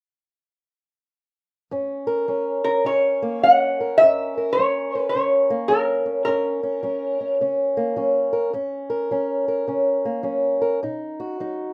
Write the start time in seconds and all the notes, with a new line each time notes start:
1.71 F#2 C#4
2.07 A#4
2.28 F#3 C#4
2.64 C#4 A#4
2.85 C#3 C#4 C#5
3.22 A#3
3.43 F#3 C#4 F#5
3.81 A#4
3.98 F#2 C#4 E5
4.38 A#4
4.53 C#5
4.59 F#3 C#4
4.95 A#4
5.09 C#5
5.15 C#3 C#4
5.50 A#3
5.68 F#3 C#4 A#4
6.06 C#4
6.25 F#2 C#4 A#4
6.63 C#4
6.83 F#3 C#4
7.21 C#4
7.41 C#3 C#4
7.77 A#3
7.96 F#3 C#4
8.33 A#4
8.53 F#2 C#4
8.90 A#4
9.11 F#3 C#4
9.48 A#4
9.68 C#3 C#4
10.05 A#3
10.23 F#3 C#4
10.62 A#4
10.83 B2 D#4
11.20 F#4
11.40 F#3 D#4